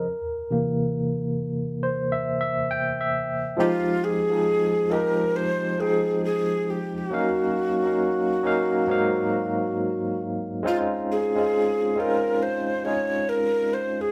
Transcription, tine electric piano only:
0.00 1.34 A#4 medium
0.51 3.55 C3 medium
0.51 3.55 E3 medium
0.51 3.55 A#3 medium
1.83 2.12 C5 medium
2.12 2.40 E5 medium
2.41 2.71 E5 medium
2.71 2.98 G5 loud
3.01 3.55 E5 medium
3.57 4.14 F3 medium
3.57 4.14 G#3 medium
3.57 4.15 C4 medium
3.57 4.15 D#4 medium
3.57 4.15 G4 loud
4.30 4.81 F3 medium
4.30 4.81 G#3 medium
4.30 4.82 C4 medium
4.30 4.82 D#4 medium
4.30 4.83 G#4 medium
4.89 5.66 F3 medium
4.89 5.66 G#3 medium
4.89 5.67 C4 medium
4.89 5.67 D#4 medium
4.89 5.68 G4 medium
5.78 6.91 F3 medium
5.78 6.92 G#3 medium
5.78 6.92 C4 medium
5.78 6.93 D#4 medium
5.78 6.93 G5 medium
7.10 7.67 F#3 loud
7.10 7.67 A#3 medium
7.10 7.68 C#4 medium
7.10 7.68 D#4 medium
7.10 7.69 F5 loud
7.83 8.34 F#3 medium
7.83 8.35 A#3 medium
7.83 8.35 C#4 medium
7.83 8.36 D#4 medium
7.83 8.36 F5 medium
8.43 8.87 F#3 loud
8.43 8.88 A#3 medium
8.43 8.88 C#4 medium
8.43 8.89 D#4 medium
8.43 8.89 F5 loud
8.87 10.34 G#2 loud
8.87 10.34 F#3 medium
8.87 10.35 A#3 medium
8.87 10.35 C4 medium
8.87 10.35 D#4 medium
8.87 10.36 F5 loud
10.63 11.20 G#3 loud
10.63 11.20 C4 medium
10.63 11.21 C#4 medium
10.63 11.21 D#4 loud
10.67 11.22 F4 loud
11.35 11.87 G#3 medium
11.35 11.87 C4 medium
11.35 11.88 C#4 medium
11.35 11.88 D#4 medium
11.35 11.89 F4 medium
11.95 12.72 G#3 medium
11.95 12.72 C4 medium
11.95 12.73 C#4 medium
11.95 12.73 D#4 medium
11.95 12.74 F4 medium
12.84 13.97 G#3 medium
12.84 13.98 C#4 medium
12.84 13.98 D#4 medium
12.84 13.99 G#4 medium

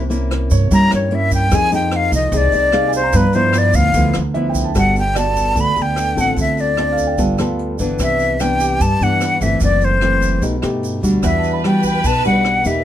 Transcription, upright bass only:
0.00 0.47 C2 loud
0.51 0.70 G2 medium
0.71 0.90 G2 loud
0.92 1.48 G2 medium
1.52 2.08 F2 loud
2.12 2.31 C2 medium
2.32 2.51 C2 loud
2.53 3.10 C2 medium
3.13 3.70 G2 loud
3.74 3.93 D2 medium
3.94 4.13 D2 loud
4.16 4.72 D2 medium
4.75 5.52 G1 medium
5.56 5.75 D2 medium
5.76 6.14 D2 medium
6.17 6.36 A1 medium
6.37 7.14 D2 medium
7.18 7.37 G1 medium
7.39 7.76 D2 medium
7.79 7.98 G1 medium
8.00 8.77 C2 medium
8.80 8.99 G2 medium
9.00 9.38 G2 medium
9.41 9.60 G1 medium
9.61 10.38 F#1 medium
10.42 10.61 B1 medium
10.63 11.01 G2 medium
11.03 11.22 D2 medium
11.23 12.01 E2 medium
12.04 12.23 B1 medium
12.25 12.63 B1 medium
12.65 12.84 E2 medium

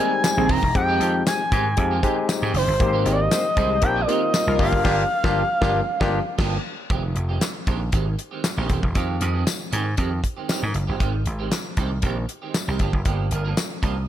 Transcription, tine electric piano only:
0.00 0.46 G3 medium
0.00 0.46 G#3 medium
0.00 0.46 C4 medium
0.00 0.46 D#4 medium
0.75 1.40 G#3 medium
0.75 1.40 C4 medium
0.75 1.40 D#4 medium
0.75 1.40 G4 medium
1.77 1.94 G#3 medium
1.77 1.94 C4 medium
1.77 1.94 D#4 medium
1.77 1.94 G4 medium
2.03 2.51 G#3 medium
2.03 2.51 C4 medium
2.03 2.52 D#4 medium
2.03 2.52 G4 loud
2.80 3.45 A#3 medium
2.80 3.45 C4 medium
2.80 3.45 D#4 medium
2.80 3.45 G4 medium
3.82 3.99 A#3 medium
3.82 3.99 C4 medium
3.82 3.99 D#4 medium
3.82 3.99 G4 medium
4.08 4.56 A#3 medium
4.08 4.56 C4 medium
4.08 4.57 D#4 medium
4.08 4.57 F4 medium
4.59 4.83 A#3 medium
4.59 4.83 D4 medium
4.59 4.83 F4 medium
4.59 4.84 G4 medium
4.84 5.02 A#3 loud
4.84 5.03 D4 loud
4.84 5.03 F4 loud
4.84 5.03 G4 loud
5.24 5.41 A#3 loud
5.24 5.41 D4 medium
5.24 5.41 F4 loud
5.24 5.42 G4 loud
5.61 5.79 A#3 loud
5.61 5.80 D4 loud
5.61 5.80 F4 loud
5.61 5.80 G4 medium
6.01 6.18 A#3 loud
6.01 6.18 D4 loud
6.01 6.18 F4 loud
6.01 6.19 G4 loud

